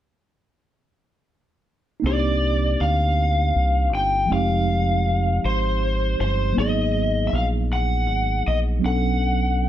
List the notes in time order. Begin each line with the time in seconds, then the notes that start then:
2.00 A#3 C4 D#4
2.04 C2 D4 G4 D5
2.80 D2 F5
3.56 C2
3.93 G1 G5
4.26 F3 G#3 C4
4.31 F1 D#4 G4 F5
5.45 G#1 C5
6.20 G1 C5
6.52 F#3 A#3 B3
6.58 G#1 D#4 G#4 D#5
7.27 E5
7.33 A#1 F5
7.73 F#5
8.09 G#1
8.47 A#1 D#5
8.79 F#3 B3
8.83 B1 C#4 D4 A4 F#5